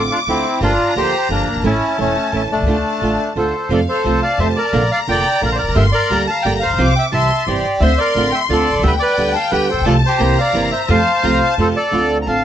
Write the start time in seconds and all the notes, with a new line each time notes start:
Already playing: D3 A3 C4 F4 D6
0.11 D4 F4
0.27 D2 D3 A3 C4 E4 F4
0.61 G1 D3 F3 A#3 D4 F4 G4 A#5
0.95 D2 D3 F3 A#3 D4 G4 C5
1.29 G1 D3 F3 A#3 D4 G4
1.52 F#1
1.56 G1
1.60 G#1 E3 A3
1.64 A1 C#4 E4 A5
1.98 E1 E3 A3 C#4 E4
2.32 A1 E3 A3 C#4 E4
2.52 B1 A3 D4
2.57 C2
2.62 C#2
2.66 D2 D3 A3 D4 F4 A5
3.01 A1 D3 A3 D4 F4
3.36 D2 D3 A3 D4 F4 A4 C5
3.69 F2 C3 F3 A3 C4 F4 A4 D5 F5
3.89 A4 C5
4.03 C2 C3 F3 A3 C4 F4 A5
4.23 D5 F5
4.38 F2 C3 F3 A3 C4 F4 C5 E5
4.56 A#4 D5
4.73 A#1 D3 A#3 D4 F4 A#5
4.91 D5 F5
5.07 F1 D3 A#3 D4 F4 D5 G5
5.41 A#1 D3 A#3 D4 F4 D5
5.45 A#4
5.52 C5 D5
5.58 A#4
5.63 E1
5.68 F1 F#1
5.75 G1 D3 G3 A#3 D4 G4 A#4 E5 C6
5.92 A#4 D5
6.10 D2 D3 G3 A#3 D4 G4 A#5
6.27 F5 A5
6.43 G1 D3 G3 A#3 D4 G4 D5 G5
6.60 C5 F5
6.66 A1
6.70 A#1 B1
6.78 C2 C3 F3 G3 C4 F4 D6
6.96 E5 G5
7.12 C2 C3 E3 G3 C4 E4 E5 A5 C6
7.47 G1 C3 E3 G3 C4 E4 G4 D5
7.80 D2 D3 A3 C4 F4 C5 E5 C6
7.98 A#4 D5
8.15 A1 D3 A3 C4 F4
8.32 E5 G5
8.49 D2 D3 A3 C4 F4 A4 D5
8.70 B1
8.75 C2
8.79 C#2 D3 G3 E5
8.83 D2 B3 G4 B4 G5
8.99 B4 D5
9.18 D2 D3 G3 B3 G4
9.33 F5 A5
9.51 D2 D3 G3 B3 G4 B4
9.69 A4 C5
9.73 A1 A#1
9.81 B1
9.85 C2 C3 F3 A3 C4 F4 A4 D5 A5
10.06 G4 C5
10.19 C2 C3 E3 A#3 C4 E4 A#5
10.38 D5 F5
10.53 G1 C3 E3 A#3 C4 E4
10.71 C5 E5
10.89 F2 C3 F3 A3 C4 F4 C5 F5 A5
11.23 C2 C3 F3 A3 C4 F4 A#5
11.42 A5
11.58 F2 C3 F3 A3 C4 F4 A4 C5
11.76 A4 D5
11.91 D2 D3 A3 C4 F4
12.22 A#5
12.26 A1 D3 A3 C4 F4 F5 A5